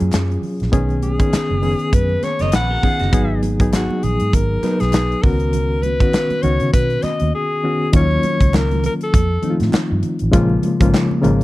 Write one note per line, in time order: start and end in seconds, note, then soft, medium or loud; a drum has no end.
0.00 0.10 F#2 medium
0.00 0.74 F#3 medium
0.00 0.73 C#4 medium
0.00 0.75 F4 medium
0.00 0.73 G#4 loud
0.00 closed hi-hat medium
0.11 0.36 F#2 medium
0.11 snare loud
0.11 clap medium
0.11 closed hi-hat medium
0.11 muted conga soft
0.11 high conga soft
0.30 closed hi-hat soft
0.30 muted conga soft
0.42 open hi-hat soft
0.42 low conga medium
0.60 0.71 A#1 medium
0.60 snare soft
0.60 closed hi-hat medium
0.72 1.19 B1 medium
0.72 1.07 D#3 loud
0.72 1.07 B3 loud
0.72 1.08 C#4 loud
0.72 1.08 G#4 loud
0.72 kick loud
0.72 closed hi-hat medium
0.72 muted conga soft
0.72 low conga medium
0.89 closed hi-hat soft
0.89 muted conga soft
1.02 1.95 G#4 medium
1.02 closed hi-hat medium
1.02 high conga medium
1.19 1.53 D#3 medium
1.19 1.54 B3 medium
1.19 1.54 C#4 medium
1.19 1.54 G#4 medium
1.19 kick medium
1.19 closed hi-hat medium
1.33 muted fingered electric bass stroke soft
1.33 snare loud
1.33 clap loud
1.33 closed hi-hat medium
1.50 1.73 F#1 medium
1.50 muted conga soft
1.50 high conga medium
1.62 2.54 D#3 medium
1.62 2.55 B3 medium
1.62 2.55 C#4 medium
1.62 2.55 G#4 medium
1.62 open hi-hat medium
1.62 low conga medium
1.79 closed hi-hat medium
1.93 2.16 F#2 medium
1.93 2.25 B4 loud
1.93 kick loud
1.93 closed hi-hat medium
1.93 high conga medium
2.09 muted conga soft
2.23 2.43 C#5 loud
2.23 clap medium
2.23 closed hi-hat medium
2.23 high conga medium
2.39 2.50 F#1 medium
2.39 2.53 A#4 medium
2.39 2.52 C#5 medium
2.39 2.54 D#5 medium
2.39 snare soft
2.39 closed hi-hat medium
2.39 high conga medium
2.52 2.76 A#1 medium
2.52 2.70 G#4 medium
2.52 2.70 B4 medium
2.52 3.41 F#5 loud
2.52 snare loud
2.52 clap medium
2.52 closed hi-hat loud
2.52 muted conga soft
2.52 high conga medium
2.70 2.82 F#4 medium
2.70 2.82 A#4 medium
2.70 muted conga soft
2.83 3.07 D#3 medium
2.83 3.07 B3 medium
2.83 3.07 C#4 medium
2.83 3.00 F4 medium
2.83 3.00 G#4 medium
2.83 3.07 G#4 medium
2.83 kick medium
2.83 open hi-hat soft
2.83 low conga medium
3.00 3.10 F#1 medium
3.00 3.29 D#4 medium
3.00 3.29 F#4 medium
3.00 snare soft
3.00 closed hi-hat medium
3.12 3.87 G#1 medium
3.12 3.48 F#3 medium
3.12 3.48 B3 medium
3.12 3.48 D#4 medium
3.12 3.49 G#4 loud
3.12 kick loud
3.12 closed hi-hat medium
3.12 muted conga soft
3.12 low conga medium
3.43 closed hi-hat medium
3.43 high conga medium
3.59 4.39 F#3 medium
3.59 4.39 B3 medium
3.59 4.39 D#4 medium
3.59 4.39 G#4 medium
3.59 kick loud
3.59 closed hi-hat medium
3.73 4.05 F#4 medium
3.73 snare loud
3.73 clap loud
3.73 closed hi-hat loud
3.90 muted conga soft
3.90 high conga medium
4.03 4.17 A#1 medium
4.03 4.36 G#4 medium
4.03 closed hi-hat medium
4.03 low conga medium
4.20 4.31 G#2 medium
4.20 closed hi-hat medium
4.33 4.56 G#1 medium
4.33 4.82 A#4 loud
4.33 kick medium
4.33 closed hi-hat medium
4.33 high conga medium
4.63 5.23 F#3 medium
4.63 5.23 B3 medium
4.63 5.24 D#4 medium
4.63 5.24 B4 medium
4.63 clap medium
4.63 closed hi-hat medium
4.63 high conga medium
4.80 5.14 B1 medium
4.80 5.24 G#4 loud
4.80 snare soft
4.80 closed hi-hat medium
4.80 high conga medium
4.92 snare loud
4.92 clap medium
4.92 closed hi-hat loud
4.92 muted conga soft
4.92 high conga soft
5.12 closed hi-hat soft
5.23 6.05 C#2 medium
5.23 5.83 D#3 medium
5.23 5.84 B3 medium
5.23 5.84 C#4 medium
5.23 5.84 F#4 medium
5.23 5.84 A#4 loud
5.23 kick loud
5.23 open hi-hat soft
5.23 low conga soft
5.40 closed hi-hat soft
5.53 closed hi-hat medium
5.53 muted conga soft
5.53 low conga medium
5.82 6.44 B4 loud
5.82 closed hi-hat medium
5.82 high conga medium
6.00 6.34 D#3 medium
6.00 6.34 B3 medium
6.00 6.35 C#4 medium
6.00 6.35 F#4 medium
6.00 kick loud
6.00 closed hi-hat medium
6.13 snare loud
6.13 clap loud
6.13 closed hi-hat medium
6.13 muted conga soft
6.30 closed hi-hat soft
6.30 muted conga soft
6.30 high conga medium
6.43 6.57 C#2 medium
6.43 7.35 D#3 medium
6.43 7.35 B3 medium
6.43 7.36 C#4 medium
6.43 7.36 F#4 medium
6.43 6.72 C#5 loud
6.43 closed hi-hat medium
6.43 low conga medium
6.60 6.71 C#3 medium
6.60 closed hi-hat medium
6.73 6.97 B2 medium
6.73 7.05 B4 loud
6.73 kick loud
6.73 closed hi-hat medium
6.73 muted conga soft
6.73 high conga medium
6.90 closed hi-hat soft
6.90 muted conga soft
7.03 7.33 D#5 loud
7.03 muted fingered electric bass stroke soft
7.03 clap medium
7.03 closed hi-hat medium
7.03 high conga medium
7.20 7.31 D#2 medium
7.20 closed hi-hat medium
7.20 high conga medium
7.35 7.90 G#4 loud
7.64 7.88 D#3 medium
7.64 7.88 B3 medium
7.64 7.88 C#4 medium
7.64 7.88 F#4 medium
7.93 8.17 D#2 loud
7.93 8.85 D#3 medium
7.93 8.01 F3 medium
7.93 8.85 A#3 medium
7.93 8.85 C#4 medium
7.93 8.86 F4 loud
7.93 8.58 C#5 loud
7.93 kick loud
7.93 closed hi-hat medium
7.93 muted conga soft
8.00 8.88 F#3 medium
8.11 muted conga soft
8.23 closed hi-hat medium
8.23 high conga medium
8.41 8.86 C#2 medium
8.41 kick medium
8.41 closed hi-hat medium
8.54 8.85 A#4 loud
8.54 snare loud
8.54 clap loud
8.71 closed hi-hat soft
8.71 muted conga soft
8.71 high conga medium
8.84 8.93 A#4 loud
8.84 closed hi-hat medium
8.84 low conga medium
9.01 9.58 A4 medium
9.01 closed hi-hat medium
9.14 9.37 F2 medium
9.14 kick loud
9.14 closed hi-hat loud
9.14 muted conga soft
9.14 high conga medium
9.42 10.13 D#3 medium
9.42 10.13 F3 medium
9.42 10.13 A3 medium
9.42 10.14 C4 medium
9.42 9.51 D#4 medium
9.42 closed hi-hat medium
9.42 high conga medium
9.50 10.17 F4 medium
9.60 9.71 A2 medium
9.60 snare soft
9.60 closed hi-hat medium
9.60 high conga medium
9.72 muted fingered electric bass stroke soft
9.72 snare loud
9.72 clap loud
9.72 muted conga soft
9.72 high conga medium
9.92 10.01 G2 medium
10.03 closed hi-hat medium
10.03 low conga medium
10.19 10.31 A1 medium
10.19 closed hi-hat medium
10.31 10.56 A#1 loud
10.31 10.68 C#3 loud
10.31 10.68 F3 loud
10.31 10.68 G#3 loud
10.31 10.69 A#3 loud
10.31 10.68 F4 loud
10.31 kick loud
10.31 closed hi-hat loud
10.50 muted conga soft
10.63 closed hi-hat medium
10.63 high conga medium
10.80 10.91 G#1 loud
10.80 11.14 C#3 medium
10.80 11.14 F3 medium
10.80 11.15 G#3 medium
10.80 11.15 A#3 medium
10.80 11.15 F4 loud
10.80 kick loud
10.80 closed hi-hat medium
10.94 snare loud
10.94 clap loud
11.11 muted conga soft
11.11 high conga medium
11.22 11.44 G#1 loud
11.22 11.44 C#3 loud
11.22 11.44 F3 medium
11.22 11.44 G#3 medium
11.22 11.44 A#3 medium
11.22 11.44 F4 loud
11.22 closed hi-hat medium
11.22 low conga medium